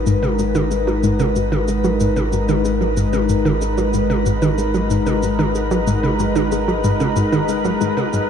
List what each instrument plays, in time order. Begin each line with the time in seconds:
Already playing: sub bass G#1, analog synth pad G#3 D#4 A#4 B4, synth texture F#5
0.07 synth arpeggio sound G#2, shaker
0.23 synth arpeggio sound C#3, high tom
0.39 synth arpeggio sound G#2, shaker
0.55 synth arpeggio sound D#3, high tom, shaker
0.71 synth arpeggio sound G#3, shaker
0.87 synth arpeggio sound F#3, high tom
1.03 synth arpeggio sound G#2, shaker
1.20 synth arpeggio sound C#3, high tom, shaker
1.36 synth arpeggio sound G#2, shaker
1.52 synth arpeggio sound D#3, high tom
1.68 synth arpeggio sound G#3, shaker
1.84 synth arpeggio sound F#3, high tom, shaker
2.00 synth arpeggio sound G#2, shaker
2.16 synth arpeggio sound C#3, high tom, shaker
2.33 synth arpeggio sound G#2, shaker
2.49 synth arpeggio sound D#3, high tom, shaker
2.65 synth arpeggio sound G#3, shaker
2.81 synth arpeggio sound F#3, high tom
2.97 synth arpeggio sound G#2, shaker
3.13 synth arpeggio sound C#3, high tom, shaker
3.29 synth arpeggio sound G#2, shaker
3.45 synth arpeggio sound D#3, high tom
3.62 synth arpeggio sound G#3, shaker
3.78 synth arpeggio sound F#3, high tom, shaker
3.94 synth arpeggio sound G#2, shaker
4.10 synth arpeggio sound C#3, high tom
4.26 synth arpeggio sound G#2, shaker
4.42 synth arpeggio sound D#3, high tom, shaker
4.58 synth arpeggio sound G#3, shaker
4.74 synth arpeggio sound F#3, high tom, shaker
4.90 synth arpeggio sound G#2, shaker
5.07 synth arpeggio sound C#3, high tom, shaker
5.23 synth arpeggio sound G#2, shaker
5.39 synth arpeggio sound D#3, high tom
5.55 synth arpeggio sound G#3, shaker
5.71 synth arpeggio sound F#3, high tom, shaker
5.87 synth arpeggio sound G#2, shaker
6.03 synth arpeggio sound C#3, high tom
6.19 synth arpeggio sound G#2, shaker
6.36 synth arpeggio sound D#3, high tom, shaker
6.52 synth arpeggio sound G#3, shaker
6.68 synth arpeggio sound F#3, high tom
6.84 synth arpeggio sound G#2, shaker
7.00 synth arpeggio sound C#3, high tom, shaker
7.16 synth arpeggio sound G#2, shaker
7.32 synth arpeggio sound D#3, high tom, shaker
7.49 synth arpeggio sound G#3, shaker
7.65 synth arpeggio sound F#3, high tom, shaker
7.81 sub bass G#1, synth arpeggio sound G#2, shaker
7.97 synth arpeggio sound C#3, high tom
8.13 synth arpeggio sound G#2, shaker